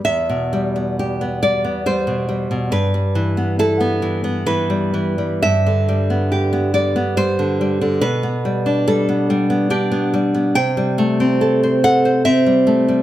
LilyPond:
\new Staff \with { instrumentName = "Nylon-string guitar" } { \time 3/4 \key e \minor \tempo 4 = 70 << { e''4. d''8 c''4 | b'4 a'4 b'4 | e''4. d''8 c''4 | b'4 a'4 g'8 r8 |
\key a \dorian g''4. fis''8 e''4 | } \\ { e,16 b,16 g16 b16 g'16 b16 g16 b16 g16 b,16 g16 b,16 | g,16 g16 e16 b16 e'16 b16 e16 b16 e16 g16 e16 g16 | g,16 d16 g16 b16 g'16 b16 g16 b16 g16 d16 g16 d16 | b,16 b16 g16 d'16 g16 b16 g16 b16 d'16 b16 g16 b16 |
c16 g16 a16 c'16 a'16 c''16 a'16 c''16 c'16 g16 a16 g16 | } >> }